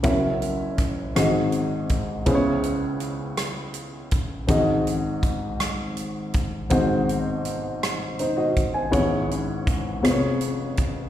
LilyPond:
<<
  \new Staff \with { instrumentName = "Grand piano" } { \time 6/8 \key cis \minor \tempo 4. = 54 << { r2. | r2. | r2. | r2 <dis' bis'>16 <fis' dis''>8 <bis' gis''>16~ |
<bis' gis''>16 r2 r8. | } \\ { <fis,, fis, cis' e' fis' ais' e''>4. <gis,, gis, bis dis' fis' gis' dis''>4. | <cis, cis b cis' e' gis' bis' cis''>2. | <gis,, gis, bis dis' fis' gis' dis''>2. | <gis,, gis, bis dis' fis' gis' bis'>2. |
<gis,, gis, b cis' e' gis' cis''>4. <eis,, eis, b cis' eis' gis' bis' cis''>4. | } >> }
  \new DrumStaff \with { instrumentName = "Drums" } \drummode { \time 6/8 <hh bd>8 hh8 <hh bd ss>8 <hh ss>8 hh8 <hh bd>8 | <hh bd>8 hh8 hh8 <hh ss>8 hh8 <hh bd>8 | <hh bd>8 hh8 <hh bd>8 <hh ss>8 hh8 <hh bd>8 | <hh bd>8 hh8 hh8 <hh ss>8 hh8 <hh bd>8 |
<hh bd>8 hh8 <hh bd>8 <hh ss>8 hh8 <hh bd>8 | }
>>